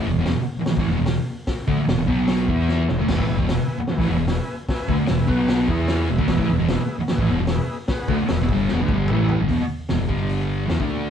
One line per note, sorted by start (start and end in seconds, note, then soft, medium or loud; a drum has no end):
0.06 0.14 E1 medium
0.06 0.18 E2 medium
0.06 0.18 B2 medium
0.14 0.25 E1 loud
0.20 0.27 E2 medium
0.20 0.28 B2 loud
0.25 0.35 E1 medium
0.25 0.37 E2 medium
0.25 0.39 B2 medium
0.25 snare loud
0.25 open hi-hat medium
0.36 muted picked electric bass stroke soft
0.36 muted distorted electric guitar stroke medium
0.57 muted picked electric bass stroke soft
0.57 muted distorted electric guitar stroke medium
0.66 muted picked electric bass stroke soft
0.66 muted distorted electric guitar stroke medium
0.66 snare loud
0.66 open hi-hat medium
0.77 0.85 A1 loud
0.77 0.88 A2 loud
0.77 0.89 E3 loud
0.77 kick loud
0.86 0.96 E1 loud
0.86 0.97 E2 loud
0.91 0.98 B2 medium
0.97 1.16 E1 medium
0.97 1.15 E2 medium
0.97 1.15 B2 medium
1.06 snare loud
1.06 open hi-hat medium
1.47 kick loud
1.47 snare loud
1.47 open hi-hat medium
1.67 1.77 D2 loud
1.67 1.78 D3 medium
1.67 1.78 A3 medium
1.67 kick loud
1.77 muted picked electric bass stroke soft
1.77 muted distorted electric guitar stroke medium
1.87 1.97 E1 medium
1.87 1.97 E2 medium
1.87 1.96 B2 medium
1.87 snare loud
1.87 open hi-hat medium
1.97 2.07 E1 medium
1.97 2.09 E2 medium
1.97 2.06 B2 medium
2.07 2.46 B1 medium
2.07 2.48 B2 loud
2.07 2.48 F#3 loud
2.07 2.48 B3 loud
2.07 kick loud
2.28 snare loud
2.28 open hi-hat medium
2.48 2.86 E2 loud
2.48 2.88 E3 medium
2.48 2.89 B3 medium
2.48 2.89 E4 loud
2.48 kick loud
2.69 snare medium
2.88 2.99 E1 medium
2.88 2.99 E2 medium
2.88 2.98 B2 medium
2.88 snare loud
2.99 3.08 D2 medium
2.99 3.08 D3 loud
2.99 3.09 A3 loud
3.07 3.18 E1 loud
3.07 3.18 E2 loud
3.07 3.15 B2 loud
3.07 3.37 B4 loud
3.07 kick loud
3.07 snare loud
3.07 open hi-hat medium
3.07 crash loud
3.12 3.26 A2 medium
3.12 3.38 E5 loud
3.12 3.38 G#5 loud
3.17 3.28 A1 medium
3.17 3.27 E3 medium
3.17 kick medium
3.26 3.38 E1 medium
3.26 3.35 E2 medium
3.26 3.37 B2 medium
3.36 3.48 E1 loud
3.36 3.46 E2 loud
3.36 3.47 B2 loud
3.36 kick loud
3.47 3.59 E1 medium
3.47 3.57 E2 medium
3.47 3.58 B2 medium
3.47 snare loud
3.47 open hi-hat medium
3.52 3.78 B4 medium
3.52 3.78 E5 medium
3.52 3.78 G#5 medium
3.58 muted distorted electric guitar stroke medium
3.58 muted picked electric bass stroke soft
3.78 muted distorted electric guitar stroke medium
3.78 muted picked electric bass stroke soft
3.87 4.17 B4 medium
3.87 4.17 E5 medium
3.87 4.17 G#5 medium
3.87 muted distorted electric guitar stroke medium
3.87 snare loud
3.87 open hi-hat medium
3.91 muted picked electric bass stroke soft
3.98 4.08 A1 medium
3.98 4.08 A2 loud
3.98 4.09 E3 loud
3.98 kick loud
4.08 4.18 E1 loud
4.08 4.17 E2 medium
4.08 4.17 B2 loud
4.18 4.37 E1 medium
4.18 4.35 E2 medium
4.18 4.35 B2 medium
4.28 4.57 B4 medium
4.28 4.56 E5 medium
4.28 4.57 G#5 loud
4.28 snare loud
4.28 open hi-hat medium
4.68 4.97 B4 loud
4.68 4.97 E5 loud
4.68 4.97 G#5 loud
4.68 kick loud
4.68 snare loud
4.68 open hi-hat medium
4.88 4.98 D2 loud
4.88 4.98 D3 medium
4.88 4.99 A3 medium
4.88 kick loud
4.98 muted distorted electric guitar stroke medium
4.98 muted picked electric bass stroke soft
5.07 5.18 E1 loud
5.07 5.18 E2 medium
5.07 5.19 B2 medium
5.07 5.27 B4 medium
5.07 5.29 E5 medium
5.07 5.29 G#5 medium
5.07 snare loud
5.07 open hi-hat medium
5.19 5.28 E1 medium
5.19 5.29 E2 medium
5.19 5.26 B2 medium
5.28 5.66 B1 medium
5.28 5.68 B2 loud
5.28 5.68 F#3 medium
5.28 5.68 B3 loud
5.28 5.61 F#4 loud
5.28 5.61 B4 medium
5.28 5.61 F#5 loud
5.28 kick loud
5.48 snare loud
5.48 open hi-hat medium
5.68 6.06 E2 loud
5.68 6.08 E3 medium
5.68 6.09 B3 loud
5.68 6.09 E4 loud
5.68 6.17 G#4 medium
5.68 6.17 B4 medium
5.68 6.07 E5 loud
5.68 kick medium
5.88 6.08 G#5 medium
5.88 snare loud
5.88 open hi-hat medium
6.08 6.17 E1 medium
6.08 6.19 E2 medium
6.08 6.18 B2 medium
6.08 6.27 E5 medium
6.18 6.27 D2 loud
6.18 6.28 D3 loud
6.18 6.29 A3 loud
6.18 kick loud
6.28 6.38 E1 medium
6.28 6.38 E2 loud
6.28 6.38 B2 loud
6.28 6.56 G#4 loud
6.28 6.56 B4 loud
6.28 6.56 E5 loud
6.28 kick loud
6.28 snare loud
6.28 open hi-hat medium
6.38 6.48 A1 loud
6.38 6.48 A2 medium
6.38 6.48 E3 medium
6.38 kick medium
6.49 6.58 E1 medium
6.49 6.57 E2 medium
6.49 6.59 B2 medium
6.58 6.68 E1 loud
6.58 6.68 E2 loud
6.58 6.68 B2 loud
6.68 6.77 E1 medium
6.68 6.79 E2 medium
6.68 6.79 B2 medium
6.68 6.96 G#4 medium
6.68 6.96 B4 medium
6.68 6.97 E5 loud
6.68 snare loud
6.68 open hi-hat medium
6.78 muted picked electric bass stroke soft
6.78 muted distorted electric guitar stroke medium
6.98 muted picked electric bass stroke soft
6.98 muted distorted electric guitar stroke medium
7.08 7.37 G#4 medium
7.08 7.37 B4 medium
7.08 7.37 E5 medium
7.08 muted picked electric bass stroke soft
7.08 muted distorted electric guitar stroke medium
7.08 snare loud
7.08 open hi-hat medium
7.18 7.27 A1 loud
7.18 7.29 A2 loud
7.18 7.29 E3 loud
7.18 kick loud
7.28 7.38 E1 loud
7.28 7.39 E2 medium
7.28 7.39 B2 loud
7.38 7.57 E1 medium
7.38 7.56 E2 medium
7.38 7.56 B2 medium
7.47 7.77 B4 medium
7.47 7.77 E5 loud
7.47 snare loud
7.47 open hi-hat medium
7.52 7.78 G#4 medium
7.88 8.17 G#4 loud
7.88 8.16 B4 loud
7.88 8.17 F#5 loud
7.88 kick loud
7.88 snare loud
7.88 open hi-hat medium
8.08 8.18 D2 loud
8.08 8.18 D3 medium
8.08 8.19 A3 loud
8.08 kick loud
8.19 muted picked electric bass stroke soft
8.19 muted distorted electric guitar stroke medium
8.28 8.39 E1 medium
8.28 8.40 E2 medium
8.28 8.40 B2 medium
8.28 8.56 G#4 medium
8.28 8.56 B4 medium
8.28 8.56 E5 medium
8.28 snare loud
8.28 open hi-hat medium
8.39 8.48 E1 loud
8.39 8.50 E2 medium
8.39 8.51 B2 medium
8.49 8.67 G1 medium
8.49 8.70 G2 loud
8.49 8.70 D3 loud
8.49 8.70 G3 loud
8.49 kick loud
8.68 8.79 E1 medium
8.68 8.80 E2 loud
8.68 8.97 G#4 medium
8.68 8.97 F#5 medium
8.68 snare medium
8.72 8.80 B2 loud
8.72 8.98 B4 medium
8.80 8.88 D2 loud
8.80 8.90 D3 loud
8.80 8.90 A3 loud
8.88 9.07 G1 loud
8.88 9.10 G2 medium
8.88 9.10 D3 loud
8.88 kick loud
8.93 9.11 G3 loud
9.07 9.35 G#4 loud
9.07 9.36 B4 medium
9.07 9.36 E5 loud
9.07 mid tom loud
9.11 9.38 A1 loud
9.11 9.40 A2 loud
9.11 9.40 E3 loud
9.11 9.40 A3 loud
9.29 floor tom medium
9.39 9.48 G1 loud
9.39 9.48 G2 loud
9.39 9.49 D3 loud
9.48 9.58 E1 medium
9.48 9.58 E2 loud
9.48 9.59 B2 loud
9.48 kick loud
9.48 open hi-hat medium
9.59 muted distorted electric guitar stroke medium
9.59 muted picked electric bass stroke soft
9.89 9.98 E1 medium
9.89 9.98 E2 medium
9.89 9.98 B2 medium
9.89 snare loud
9.89 open hi-hat medium
9.99 10.08 E1 medium
9.99 10.08 E2 medium
9.99 10.09 B2 medium
10.08 10.65 G1 medium
10.08 10.68 G2 medium
10.08 10.67 D3 loud
10.08 10.68 G3 loud
10.08 kick loud
10.29 open hi-hat medium
10.67 10.78 E2 loud
10.67 10.78 E3 loud
10.67 10.78 B3 loud
10.67 snare loud
10.67 open hi-hat medium
10.80 11.10 D2 medium
10.80 11.10 D3 medium
10.80 11.10 A3 medium
10.80 11.10 D4 loud
10.80 kick loud